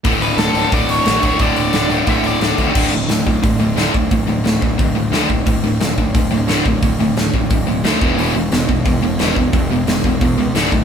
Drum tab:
CC |--------|--------|x-------|--------|
HH |oooooooo|oooooooo|--o-o-o-|o-o-o-o-|
SD |--o---o-|--o---o-|--o---o-|--o---o-|
BD |o---o--o|o---o--o|o--oo--o|o--oo--o|

CC |--------|--------|--------|--------|
HH |o-o-o-o-|o-o-o-o-|o-o-o-o-|o-o-o-o-|
SD |--o---o-|--o---o-|--o---o-|--o---o-|
BD |o--oo--o|o--oo--o|---oo--o|o--oo--o|